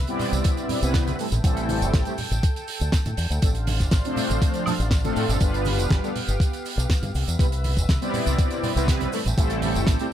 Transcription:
Already playing: B4 E5
0.07 G3 B3 C4 E4 D5, closed hi-hat, tambourine
0.19 open hi-hat, low conga, maracas
0.33 C2, closed hi-hat, tambourine, high conga, maracas
0.44 kick, closed hi-hat, tambourine, maracas
0.57 closed hi-hat, tambourine
0.69 open hi-hat, low conga, maracas
0.82 C2 G3 B3 C4 E4 B4, closed hi-hat, tambourine, maracas
0.94 kick, snare, closed hi-hat, tambourine, maracas
1.07 closed hi-hat, tambourine, high conga
1.19 G3 A3 C4 E4 A4 G5, open hi-hat, maracas
1.32 A1, closed hi-hat, tambourine, low conga, maracas
1.43 A1 G3 A3 C4 E4 A4, kick, closed hi-hat, tambourine, maracas
1.57 closed hi-hat, tambourine
1.69 open hi-hat, high conga, maracas
1.82 G1, closed hi-hat, tambourine, maracas
1.94 A1, kick, snare, closed hi-hat, tambourine, maracas
2.05 G3 A3 C4 E4 G4, closed hi-hat, tambourine
2.18 open hi-hat, low conga, maracas
2.31 A1, closed hi-hat, tambourine, high conga, maracas
2.43 kick, closed hi-hat, tambourine, maracas
2.56 closed hi-hat, tambourine
2.68 open hi-hat, maracas
2.80 D2, closed hi-hat, tambourine, maracas
2.92 kick, snare, closed hi-hat, tambourine, maracas
3.06 A2, closed hi-hat, tambourine, high conga
3.17 E2, open hi-hat, maracas
3.30 D2, closed hi-hat, tambourine, maracas
3.42 A1 F3 A3 C4 D4 A4 C5 F5, kick, closed hi-hat, tambourine, maracas
3.55 closed hi-hat, tambourine
3.67 open hi-hat, high conga, maracas
3.79 G1, kick, snare, closed hi-hat, tambourine, maracas
3.91 A1, kick, snare, closed hi-hat, tambourine, maracas
4.04 F3 A3 C4 D4 C5, closed hi-hat, tambourine
4.16 open hi-hat, low conga, maracas
4.30 A1, closed hi-hat, tambourine, high conga, maracas
4.42 kick, closed hi-hat, tambourine, maracas
4.54 closed hi-hat, tambourine
4.66 F3 A3 C4 D4 A4, open hi-hat, low conga, high woodblock, maracas
4.79 A1, closed hi-hat, tambourine, maracas
4.91 kick, snare, closed hi-hat, tambourine, maracas
5.04 F3 A3 C4 D4 A4, closed hi-hat, tambourine, high conga
5.16 A2, open hi-hat, maracas
5.29 G1, closed hi-hat, tambourine, low conga, maracas
5.40 G1 G3 B3 D4 F4 G4 B4, kick, closed hi-hat, tambourine, maracas
5.54 closed hi-hat, tambourine
5.65 open hi-hat, high conga, maracas
5.79 F1, closed hi-hat, tambourine, maracas
5.91 G1, kick, snare, closed hi-hat, maracas
6.03 G3 B3 D4 F4 A4, closed hi-hat, tambourine
6.16 open hi-hat, low conga, maracas
6.28 G1, closed hi-hat, tambourine, high conga, maracas
6.40 kick, closed hi-hat, tambourine, maracas
6.53 closed hi-hat, tambourine
6.66 open hi-hat, maracas
6.77 B1, closed hi-hat, tambourine, maracas
6.90 kick, snare, closed hi-hat, tambourine, maracas
7.02 G2, closed hi-hat, tambourine, high conga
7.15 C2 B4 E5, open hi-hat, maracas
7.27 E2, closed hi-hat, tambourine, maracas
7.39 C2 G3 B3 C4 E4 B4, kick, closed hi-hat, tambourine, maracas
7.52 closed hi-hat, tambourine
7.64 open hi-hat, high conga, maracas
7.77 G1, kick, closed hi-hat, tambourine, maracas
7.89 C2, kick, snare, closed hi-hat, tambourine, maracas
8.01 G3 B3 C4 E4 D5, closed hi-hat, tambourine
8.14 open hi-hat, low conga, maracas
8.26 C2, closed hi-hat, tambourine, high conga, maracas
8.39 kick, closed hi-hat, tambourine, maracas
8.51 closed hi-hat, tambourine
8.63 open hi-hat, low conga, maracas
8.76 C2 G3 B3 C4 E4 B4, closed hi-hat, tambourine, maracas
8.88 kick, snare, closed hi-hat, tambourine, maracas
9.00 closed hi-hat, tambourine, high conga
9.12 G3 A3 C4 E4 A4 G5, open hi-hat, maracas
9.25 A1, closed hi-hat, tambourine, low conga, maracas
9.37 A1 G3 A3 C4 E4 A4, kick, closed hi-hat, tambourine, maracas
9.50 closed hi-hat, tambourine
9.62 open hi-hat, high conga, maracas
9.75 G1, closed hi-hat, tambourine, maracas
9.87 A1, kick, snare, closed hi-hat, tambourine, maracas
9.99 G3 A3 C4 E4 G4, closed hi-hat, tambourine

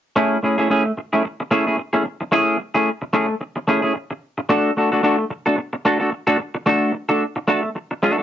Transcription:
0.16 A3 C#4 E4 G#4
0.43 A3 C#4 E4 G#4
0.58 A3 C#4 E4 G#4
0.70 A3 C#4 E4 G#4
0.85 muted clean electric guitar stroke
0.97 muted clean electric guitar stroke
1.13 A3 C#4 E4 G#4
1.25 muted clean electric guitar stroke
1.40 muted clean electric guitar stroke
1.51 A3 C#4 E4 G#4
1.67 A3 C#4 E4 G#4
1.78 muted clean electric guitar stroke
1.93 A3 C#4 E4 G#4
2.05 muted clean electric guitar stroke
2.21 muted clean electric guitar stroke
2.32 A3 C#4 E4 G#4
2.59 muted clean electric guitar stroke
2.75 A3 C#4 E4 G#4
3.02 muted clean electric guitar stroke
3.13 A3 C#4 E4 G#4
3.29 muted clean electric guitar stroke
3.41 muted clean electric guitar stroke
3.56 muted clean electric guitar stroke
3.67 A3 C#4 E4 G#4
3.82 A3 C#4 E4 G#4
3.95 muted clean electric guitar stroke
4.11 muted clean electric guitar stroke
4.38 muted clean electric guitar stroke
4.49 A3 D4 F#4 A4
4.77 A3 D4 F#4 A4
4.92 A3 D4 F#4 A4
5.03 A3 D4 F#4 A4
5.19 muted clean electric guitar stroke
5.31 muted clean electric guitar stroke
5.46 A3 D4 F#4 A4
5.58 muted clean electric guitar stroke
5.73 muted clean electric guitar stroke
5.85 A3 D4 F#4 A4
6.00 A3 D4 F#4 A4
6.12 muted clean electric guitar stroke
6.27 A3 D4 F#4 A4
6.39 muted clean electric guitar stroke
6.55 muted clean electric guitar stroke
6.66 A3 D4 F#4 A4
6.94 muted clean electric guitar stroke
7.09 A3 D4 F#4 A4
7.36 muted clean electric guitar stroke
7.47 A3 D4 F#4 A4
7.63 muted clean electric guitar stroke
7.75 muted clean electric guitar stroke
7.91 muted clean electric guitar stroke
8.03 A3 D4 F#4 A4
8.18 A3 D4 F#4 A4

